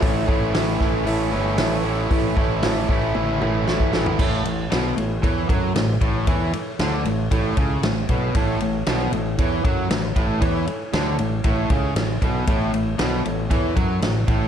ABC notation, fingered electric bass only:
X:1
M:4/4
L:1/8
Q:1/4=116
K:A
V:1 name="Fingered electric bass" clef=bass
A,,, A,,, A,,, A,,, A,,, =G,,, A,,,2 | A,,, A,,, A,,, A,,, A,,, A,,, A,,,2 | A,,, A,,, B,,, A,,, E,, F,, A,,, A,,, | E,, z D,, A,,, A,,, C,, A,,, B,,, |
A,,, A,,, B,,, A,,, E,, F,, A,,, A,,, | E,, z D,, A,,, A,,, C,, A,,, B,,, | A,,, A,,, B,,, A,,, E,, F,, A,,, A,,, |]